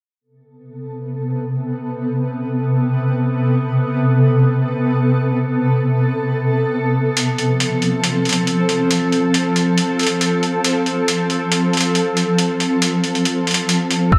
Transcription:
0.21 C3 B3 A4
7.17 F3 C4, closed hi-hat
7.38 closed hi-hat
7.60 closed hi-hat
7.82 closed hi-hat
8.04 closed hi-hat
8.25 closed hi-hat
8.29 closed hi-hat
8.33 closed hi-hat
8.47 closed hi-hat
8.69 closed hi-hat
8.91 closed hi-hat
9.12 closed hi-hat
9.34 closed hi-hat
9.56 closed hi-hat
9.78 closed hi-hat
9.99 closed hi-hat
10.03 closed hi-hat
10.07 closed hi-hat
10.21 closed hi-hat
10.43 closed hi-hat
10.64 closed hi-hat
10.86 closed hi-hat
11.08 closed hi-hat
11.30 closed hi-hat
11.52 closed hi-hat
11.73 closed hi-hat
11.77 closed hi-hat
11.81 closed hi-hat
11.95 closed hi-hat
12.17 closed hi-hat
12.38 closed hi-hat
12.60 closed hi-hat
12.82 closed hi-hat
13.04 closed hi-hat
13.15 closed hi-hat
13.25 closed hi-hat
13.47 closed hi-hat
13.51 closed hi-hat
13.54 closed hi-hat
13.69 closed hi-hat
13.91 closed hi-hat
14.12 A1 E6, kick, closed hi-hat

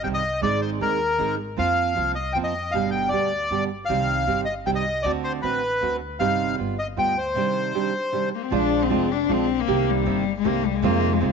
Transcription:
0.03 C2 C3 D#3 G3 C4 G4 G5
0.14 D#5
0.42 G#1 D#3 G#3 C4 D#4 G#4 D5
0.62 C5
0.80 D#2 D#3 G#3 C4 D#4 G#4 A#4
1.18 G#1 D#3 G#3 C4 D#4 G#4
1.57 F2 F3 A#3 C4 F4 F5
1.96 C2 F3 A#3 C4 F4
2.15 D#5
2.33 F2 F3 A#3 C4 F4 G5
2.44 D#5
2.71 G1 B2 D3 G3 B3 G4 F5
2.91 G5
3.09 D2 B2 D3 D5
3.13 G3 B3 G4
3.51 G1 B2 D3 G3 B3 G4
3.85 C2 C3 D#3 F5
3.90 G3 C4 G4
4.26 G1 C3 D#3 G3 C4 G4
4.45 D#5
4.66 C2 C3 D#3 G3 C4 G4 G5
4.75 D#5
5.02 D2 D3 A3 C4 F#4 D5
5.24 C5
5.42 A1 D3 A3 C4 F#4 B4
5.81 D2 D3 A3 C4 F#4
6.19 G1 C3 G3 C4 D#4 G4 F5
6.57 G1 G3 B3 F4
6.79 D#5
6.96 D2 G3 B3 F4 G5
7.18 C5
7.35 C3 D#3 G3 D4 G4
7.74 C3 D#3 G3 D4 G4
8.12 C3 D#3 G3 D4 G4
8.35 A#3
8.42 C4
8.51 A#1 F3 G#3 D4 F4
8.82 C4
8.90 F1 F3 G#3 D4 F4
9.12 D4
9.29 A#1 F3 G#3 C4 D4 F4
9.60 A#3
9.67 C2 C3 D#3 A#3 C4 G4
9.90 G3
10.06 G1 C3 D#3 A#3 C4 G4
10.38 G#3
10.44 C2 C3 D#3 A#3 C4 G4
10.66 G3
10.75 G#3
10.82 F2 C3 D#3 G#3 A#3 C4 F4
11.13 G#3
11.20 C2 C3 D#3 G#3 C4 F4

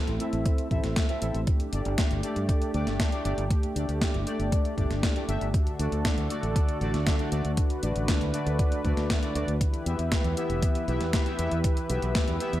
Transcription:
Already playing: A3 C4 E4 A4 E5
0.07 A1, closed hi-hat
0.20 C4 E4 A4 E5, closed hi-hat
0.33 A1, closed hi-hat
0.46 kick, closed hi-hat
0.58 closed hi-hat
0.71 A1 C4 E4 A4 E5, kick, closed hi-hat
0.84 A1, snare, closed hi-hat
0.96 kick, snare, closed hi-hat
1.09 C4 E4 A4 E5, closed hi-hat
1.22 A1 C4 E4 A4 E5, closed hi-hat
1.35 A1, closed hi-hat
1.47 A3 D4 G4, kick, closed hi-hat
1.60 closed hi-hat
1.73 G1 A3 D4 G4 D5, closed hi-hat
1.85 G1, closed hi-hat
1.98 kick, snare, closed hi-hat
2.11 G1, closed hi-hat
2.23 A3 D4 G4 D5, closed hi-hat
2.36 G2, closed hi-hat
2.49 kick, closed hi-hat
2.62 closed hi-hat
2.74 D2 A3 D4 G4 D5, closed hi-hat
2.87 G1, snare, closed hi-hat
3.00 kick, snare, closed hi-hat
3.12 A3 D4 G4 D5, closed hi-hat
3.25 G1 A3 D4 G4 D5, closed hi-hat
3.38 G1, closed hi-hat
3.50 kick, closed hi-hat
3.63 closed hi-hat
3.76 D2 A3 D4 G4 D5, closed hi-hat
3.89 D2, closed hi-hat
4.01 kick, snare, closed hi-hat
4.14 G1, closed hi-hat
4.27 A3 D4 G4 D5, closed hi-hat
4.39 G1, closed hi-hat
4.52 kick, closed hi-hat
4.65 closed hi-hat
4.78 G1 A3 D4 G4 D5, kick, closed hi-hat
4.90 G1, snare, closed hi-hat
5.03 kick, snare, closed hi-hat
5.16 A3 D4 G4 D5, closed hi-hat
5.28 G1 A3 D4 G4 E5, closed hi-hat
5.41 G1, closed hi-hat
5.54 D3 F#4 A4, kick, closed hi-hat
5.67 closed hi-hat
5.79 D2 A3 D4 F#4 D5, closed hi-hat
5.92 D2, closed hi-hat
6.05 kick, snare, closed hi-hat
6.18 D2, closed hi-hat
6.30 A3 D4 F#4 D5, closed hi-hat
6.43 A1, closed hi-hat
6.56 kick, closed hi-hat
6.69 closed hi-hat
6.81 A1 A3 D4 F#4 D5, closed hi-hat
6.94 D2, snare, closed hi-hat
7.07 kick, snare, closed hi-hat
7.19 A3 D4 F#4 D5, closed hi-hat
7.32 D2 A3 D4 F#4 D5, closed hi-hat
7.45 D2, closed hi-hat
7.57 B4, kick, closed hi-hat
7.70 closed hi-hat
7.83 A1 A3 D4 F#4 D5, closed hi-hat
7.96 A1, closed hi-hat
8.08 kick, snare, closed hi-hat
8.21 D2, closed hi-hat
8.34 A3 D4 F#4 D5, closed hi-hat
8.46 D2, closed hi-hat
8.59 kick, closed hi-hat
8.72 closed hi-hat
8.85 D2 A3 D4 F#4 D5, kick, closed hi-hat
8.97 D2, snare, closed hi-hat
9.10 kick, snare, closed hi-hat
9.23 A3 D4 F#4 D5, closed hi-hat
9.35 D2 A3 D4 F#4 D5, closed hi-hat
9.48 D2, closed hi-hat
9.61 E3 E4 G4 B4, kick, closed hi-hat
9.74 closed hi-hat
9.86 E2 B3 E4 G4 E5, closed hi-hat
9.99 E2, closed hi-hat
10.12 kick, snare, closed hi-hat
10.24 E2, closed hi-hat
10.37 B3 E4 G4 E5, closed hi-hat
10.50 E1, closed hi-hat
10.63 kick, closed hi-hat
10.75 closed hi-hat
10.88 B1 B3 E4 G4 E5, closed hi-hat
11.01 E2, snare, closed hi-hat
11.13 kick, snare, closed hi-hat
11.26 B3 E4 G4 E5, closed hi-hat
11.39 E2 B3 E4 G4 E5, closed hi-hat
11.51 E2, closed hi-hat
11.64 kick, closed hi-hat
11.77 closed hi-hat
11.90 B1 B3 E4 G4 E5, closed hi-hat
12.02 B1, closed hi-hat
12.15 kick, snare, closed hi-hat
12.28 E2, closed hi-hat
12.40 B3 E4 G4 E5, closed hi-hat
12.53 E2, closed hi-hat

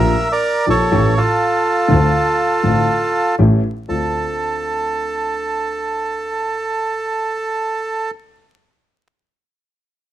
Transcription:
Already playing: A#1 A#2 F3 A#3 D4 G4 A#4 E5
0.32 A#4 D5
0.67 A#1 A#2 F3 A#3 D4 G4 A4 C#5
0.91 A1 A2 E3 A3 C#4 G4
1.17 F4 A4
1.88 D2 D3 A3 C4 F4
2.63 A1 A2 D3 A3 C4 F4
3.38 A1 A2 E3 A3 C#4 G4
3.88 D2 C4 D4 F4 A4

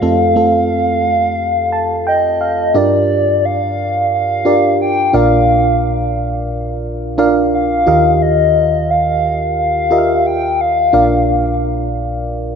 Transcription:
Already playing: F5
0.02 F2 A3 C4 F4 A4
0.36 A3 C4 F4 A4
1.72 A5
2.07 D#5 G5
2.41 F5
2.74 G2 D4 F4 G4 A#4 D5
3.45 F5
4.14 F5
4.45 D4 F4 G4 A#4 D5
4.82 G5
5.13 A#1 A#2 D4 F4 A#4 D5 F5
7.18 D4 F4 A#4 D5 F5
7.54 F5
7.87 D#2 D#3 F4 G4 A#4 D#5 F5
8.22 D#5
8.90 F5
9.59 F5
9.91 F4 G4 A#4 D#5 E5
9.98 F5
10.26 G5
10.61 F5
10.93 A#1 A#2 D4 F4 A#4 D5 F5

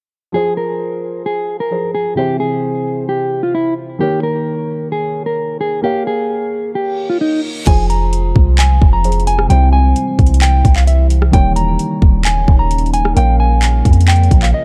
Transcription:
0.32 F3 F4 G#4 C5
0.57 A#4
1.26 G#4
1.60 A#4
1.70 F3 F4 G#4 C5
1.95 G#4
2.15 C3 E3 E4 G4 C5
2.40 G#4
3.09 G4
3.43 F4
3.55 E4
3.99 D#3 A#3 G4 A#4 C#5
4.23 A#4
4.92 G#4
5.26 A#4
5.61 G#4
5.82 A#3 G4 A#4 C#5 F5
6.07 G#4
6.75 G4, reverse cymbal
7.10 F4
7.21 D#4
7.65 F1 C3 F3 G#3 F4 G#4 C5 G#5, kick, closed hi-hat, crash
7.90 A#5, closed hi-hat
8.13 closed hi-hat
8.36 C2, kick
8.59 G#5, clap, closed hi-hat
8.82 F1, kick
8.93 A#5
9.03 F3 F4 G#4 C5, closed hi-hat
9.12 closed hi-hat
9.20 closed hi-hat
9.27 G#5, closed hi-hat
9.39 cross-stick
9.48 C2 C3 E3 G3 E4 C5 G5, closed hi-hat
9.73 G#5
9.96 closed hi-hat
10.19 C2, kick, closed hi-hat
10.26 closed hi-hat
10.34 closed hi-hat
10.42 G5, clap, closed hi-hat
10.65 C2, kick, closed hi-hat
10.76 F5, clap
10.87 E5, closed hi-hat
11.10 closed hi-hat
11.22 cross-stick
11.31 D#1 C#3 D#3 G3 A#3 D#4 C#5 G5, kick, closed hi-hat
11.56 A#5, closed hi-hat
11.79 closed hi-hat
12.02 D#1, kick
12.25 G#5, clap, closed hi-hat
12.48 D#1, kick
12.59 A#5
12.71 closed hi-hat
12.78 closed hi-hat
12.86 closed hi-hat
12.94 G#5, closed hi-hat
13.05 cross-stick
13.14 A#1 F3 A#3 F4 A#4 C#5 F5 G5, closed hi-hat
13.40 G#5
13.62 clap, closed hi-hat
13.85 F2, kick, closed hi-hat
13.93 closed hi-hat
14.01 closed hi-hat
14.08 G5, clap, closed hi-hat
14.16 closed hi-hat
14.23 closed hi-hat
14.31 A#1, kick, closed hi-hat
14.43 F5, clap
14.54 D#5

